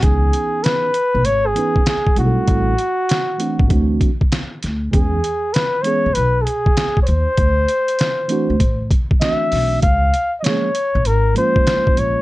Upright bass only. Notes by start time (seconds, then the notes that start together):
0.03 C#2
1.15 B1
1.25 G#1
2.17 B1
2.48 A1
3.60 A1
3.70 D2
4.64 D2
4.94 E2
6.06 C#2
6.17 B1
7.08 D#2
7.38 D2
8.50 D2
8.60 A1
9.52 B1
9.83 C#2
10.95 A#1
11.06 G#1
11.97 A#1